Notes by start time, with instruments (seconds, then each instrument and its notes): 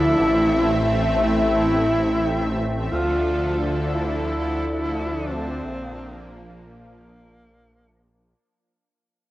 Already playing: detuned saw bass D2, analog synth pad D3 F3 D4 A4 E5, alto saxophone E4
0.19 detuned saw bass A1, analog synth pad A3 C4
1.21 alto saxophone E4
2.91 detuned saw bass D2, analog synth pad D3 F3 D4 A4, alto saxophone F4
3.94 alto saxophone E4
5.30 alto saxophone C4
5.64 detuned saw bass A#1, analog synth pad F3 A#3
6.67 alto saxophone A#3